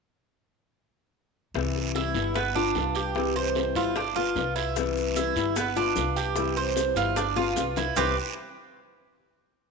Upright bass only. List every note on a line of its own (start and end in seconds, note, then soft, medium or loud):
1.54 2.11 C2 medium
2.14 2.71 G1 medium
2.75 3.70 C2 medium
3.75 4.32 G1 medium
4.35 5.30 C2 medium
5.36 5.92 G1 medium
5.96 6.90 C2 medium
6.96 7.52 G1 medium
7.56 7.92 C2 medium
7.96 8.15 C2 medium